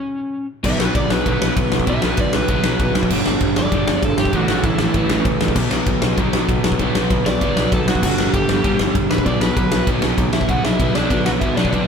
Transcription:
Already playing: C#4 C#5
0.63 B1 B2 F#3 B3 E5, kick, crash
0.79 B1 B4, snare
0.95 B1 D5, kick, ride
1.10 B1 B4, snare
1.25 B1 B2 F#3 B3, kick, ride
1.41 B1, snare
1.57 B1, kick, ride
1.72 B1, snare
1.80 kick
1.87 B1 B2 F#3 B3 E5, kick, ride
2.02 B1 B4, snare
2.17 B1 D5, kick, ride
2.33 B1 B4, snare
2.48 B1 B2 F#3 B3, kick, ride
2.64 B1, snare
2.79 B1, kick, ride
2.95 B1, snare
3.03 kick
3.10 G1 G2 D3 G3, kick, crash
3.26 G1, snare
3.40 G1, kick, ride
3.56 G1 D5, snare
3.71 G1 G2 D3 G3, kick, ride
3.88 G1, snare
4.03 G1 A4, kick, ride
4.18 G1 G4, snare
4.25 kick
4.32 A1 A2 E3 A3, kick, ride
4.36 F#4
4.48 A1, snare
4.63 A1 E4, kick, ride
4.79 A1, snare
4.94 A1 A2 E3 A3, kick, ride
5.10 A1, snare
5.25 A1, kick, ride
5.40 A1, snare
5.48 kick
5.56 B1 B2 F#3 B3, kick, crash
5.71 B1, snare
5.86 B1, kick, ride
6.02 B1, snare
6.17 B1 B2 F#3 B3, kick, ride
6.33 B1, snare
6.48 B1, kick, ride
6.64 B1, snare
6.72 kick
6.79 B1 B2 F#3 B3, kick, ride
6.95 B1, snare
7.10 B1, kick, ride
7.26 B1 D5, snare
7.40 B1 B2 F#3 B3, kick, ride
7.56 B1, snare
7.72 B1 A4, kick, ride
7.86 B1 F#4, snare
7.95 kick
8.02 G1 G2 D3 G3 F#4, kick, crash
8.17 G1, snare
8.33 G1 G4, kick, ride
8.49 G1, snare
8.63 G1 G2 D3 G3, kick, ride
8.79 G1, snare
8.95 G1, kick, ride
9.10 A#1 B4, snare
9.18 kick
9.25 B1 B2 F#3 B3 D5, kick, ride
9.40 B1 B4, snare
9.57 B1 B4, kick, ride
9.71 B1, snare
9.86 B1 B2 F#3 B3, kick, ride
10.02 B1, snare
10.18 B1, kick, ride
10.33 B1 E4 E5, snare
10.41 kick
10.48 B1 B2 F#3 B3 F#4 F#5, kick, ride
10.64 B1 E4 E5, snare
10.79 B1 B2 F#3 B3, kick, ride
10.95 B1 B2 F#3 B3 D4 D5, snare
11.10 B1 B2 F#3 B3, kick, ride
11.25 B1 F#4 F#5, snare
11.40 B1 B2 F#3 B3 E4 E5, kick, ride
11.56 B1 B2 F#3 B3 D4 D5, snare
11.65 kick
11.70 B1 B2 F#3 B3 D4 D5, kick, ride

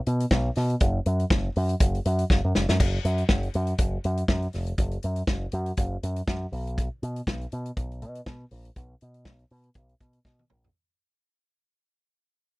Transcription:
0.06 B2, closed hi-hat
0.20 closed hi-hat
0.31 B1, kick, snare
0.55 B2, snare, open hi-hat
0.70 closed hi-hat
0.80 F#1, kick, closed hi-hat
1.06 F#2, closed hi-hat
1.20 closed hi-hat
1.30 F#1, kick, snare
1.56 F#2, open hi-hat
1.69 closed hi-hat
1.80 F#1, kick, closed hi-hat
1.95 closed hi-hat
2.05 F#2, closed hi-hat
2.19 closed hi-hat
2.30 F#1, kick, snare
2.45 F#2
2.55 F#1, snare
2.69 F#2, snare
2.80 F#1, kick, crash
3.05 F#2, closed hi-hat
3.18 closed hi-hat
3.29 F#1, kick, snare
3.43 closed hi-hat
3.54 F#2, closed hi-hat
3.67 closed hi-hat
3.78 F#1, kick, closed hi-hat
4.04 F#2, closed hi-hat
4.17 closed hi-hat
4.28 F#2, kick, snare
4.42 closed hi-hat
4.53 F1, snare, open hi-hat
4.66 closed hi-hat
4.78 F#1, kick, closed hi-hat
4.91 closed hi-hat
5.03 F#2, closed hi-hat
5.16 closed hi-hat
5.27 F#1, kick, snare
5.52 F#2, closed hi-hat
5.66 closed hi-hat
5.77 F#1, kick, closed hi-hat
6.03 F#2, closed hi-hat
6.16 closed hi-hat
6.28 F#2, kick, snare
6.52 B1, open hi-hat
6.67 closed hi-hat
6.78 kick, closed hi-hat
7.03 B2, closed hi-hat
7.16 closed hi-hat
7.27 B1, kick, snare
7.41 closed hi-hat
7.52 B2, closed hi-hat
7.66 closed hi-hat
7.77 B1, kick, closed hi-hat
7.92 closed hi-hat
8.02 B2, closed hi-hat
8.15 closed hi-hat
8.26 B2, kick, snare
8.51 A#1, open hi-hat
8.65 closed hi-hat
8.76 B1, kick, closed hi-hat
9.01 B2, closed hi-hat
9.14 closed hi-hat
9.25 B1, kick, snare
9.39 closed hi-hat
9.50 B2, open hi-hat
9.63 closed hi-hat
9.74 B1, kick, closed hi-hat
9.89 closed hi-hat
10.00 B2, kick, closed hi-hat
10.13 closed hi-hat
10.25 B2, kick, snare
10.39 high tom
10.50 A#1, mid tom
10.64 floor tom

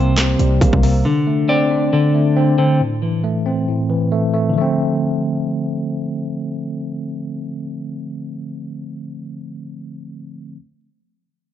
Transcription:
Already playing: C2 C3 G3 A#3 C4 C5
0.18 C3, snare, clap, closed hi-hat
0.39 C2 G3, closed hi-hat
0.61 C3 A#3, kick, closed hi-hat
0.73 C2, kick
0.83 C3 A#3, open hi-hat
1.05 D3
1.27 A3
1.49 C4 D5
1.71 D4
1.93 D3
2.15 A3
2.37 C4
2.58 D3 C4
2.80 A2
3.02 E3
3.24 A3
3.46 C4
3.68 A2
3.90 E3
4.12 A3
4.34 A3
4.50 D3 F3
4.58 A3 C4

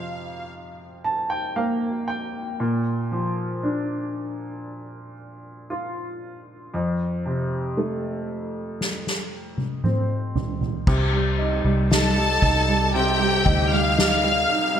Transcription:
Already playing: F2 C3 F3 F5
1.04 A5
1.30 G5
1.56 A#3 F5
2.08 G5
2.60 A#2
3.11 F3
3.63 D4
5.70 F4
6.74 F2
7.26 C3
7.77 A3
8.81 snare
9.07 snare
9.58 high tom
9.84 C4, mid tom
10.36 floor tom
10.61 floor tom
10.87 C2 C3, kick, crash
11.13 G3
11.38 D#4, ride
11.64 C2 G3
11.91 D#4 A4 A5, snare, ride
12.17 G3, ride
12.42 C2 D#4, kick, ride
12.68 G3, ride
12.94 C3 G4 G5, ride
13.20 G3
13.46 D2 D#4, kick, ride
13.71 G3 F5 F6
13.97 D#4, snare, ride
14.23 G3
14.49 D#4, ride
14.75 G3

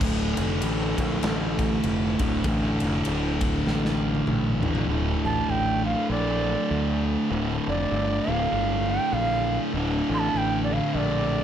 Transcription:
0.00 D1 D2 A2 D3, kick, crash
0.37 F1, ride
0.62 A1, ride
0.98 A#1, kick, ride
1.23 A1, snare, ride
1.59 kick, ride
1.83 F1, ride
2.19 D1 A2 D3, kick, ride
2.23 D2
2.44 A1 D2 A2 D3, kick, ride
2.80 F1, ride
3.05 D1, ride
3.41 kick, ride
3.66 A1, snare
3.85 snare
4.15 high tom
4.27 A1, mid tom
4.62 D2 A2 D3, floor tom
4.75 floor tom
4.88 D1 D2 A2 D3
5.25 A1 A5
5.48 A1 G5
5.84 D2 A2 D3 F5
6.09 A#1 D5
6.70 D2
7.31 D1 D2 A2
7.35 D3
7.67 F1 D5
7.91 G1
8.27 D1 D2 A2 D3 F5
8.52 G1
8.90 G5
9.12 A#1 F5
9.73 D1 D2 A2 D3
10.09 A1
10.14 C6
10.19 A5
10.34 A1 G5
10.64 D5
10.70 D2 A2 D3 F5
10.94 A#1 D5

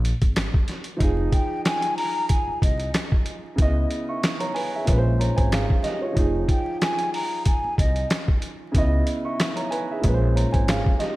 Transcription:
Already playing: A#1
0.05 closed hi-hat
0.22 G#1, kick, closed hi-hat
0.36 snare, closed hi-hat
0.54 kick
0.68 snare, closed hi-hat
0.84 closed hi-hat
0.97 F3 D#4, kick, closed hi-hat
1.01 F1 F4 G#4
1.32 G5, kick, closed hi-hat
1.65 G#5, snare, closed hi-hat
1.82 closed hi-hat
1.97 A#5, open hi-hat
2.29 G#5, kick, closed hi-hat
2.48 muted upright bass stroke
2.62 C2 D#5, kick, closed hi-hat
2.80 closed hi-hat
2.94 snare, closed hi-hat
3.12 kick
3.26 closed hi-hat
3.56 C#2 C#3 B3, kick, closed hi-hat
3.60 E4 D#5
3.91 closed hi-hat
4.09 E5 C#6
4.23 snare, closed hi-hat
4.40 C#5 A#5, closed hi-hat
4.54 B4 G#5, open hi-hat
4.75 G#4 E5
4.85 A#1 A#2 G#3, kick, closed hi-hat
4.89 C#4 B4
4.98 C5
5.20 C#5 A#5, closed hi-hat
5.36 G#1 C5 G#5, kick, closed hi-hat
5.52 G#4 F5, snare, closed hi-hat
5.70 kick
5.83 G4 D#5, snare, closed hi-hat
6.02 F4 C#5
6.13 F3 D#4, kick, closed hi-hat
6.17 F1 F4 G#4
6.49 G5, kick, closed hi-hat
6.81 G#5, snare, closed hi-hat
6.99 closed hi-hat
7.14 A#5, open hi-hat
7.45 G#5, kick, closed hi-hat
7.64 muted upright bass stroke
7.78 C2 D#5, kick, closed hi-hat
7.96 closed hi-hat
8.10 snare, closed hi-hat
8.28 kick
8.42 closed hi-hat
8.72 C#2 C#3 B3, kick, closed hi-hat
8.76 E4 D#5
9.07 closed hi-hat
9.25 E5 C#6
9.40 snare, closed hi-hat
9.56 C#5 A#5, closed hi-hat
9.70 B4 G#5, closed hi-hat
9.91 G#4 E5
10.01 A#1 A#2 G#3, kick, closed hi-hat
10.05 C#4 B4
10.14 C5
10.36 C#5 A#5, closed hi-hat
10.52 G#1 C5 G#5, kick, closed hi-hat
10.68 G#4 F5, snare, closed hi-hat
10.86 kick
10.99 G4 D#5, snare, closed hi-hat

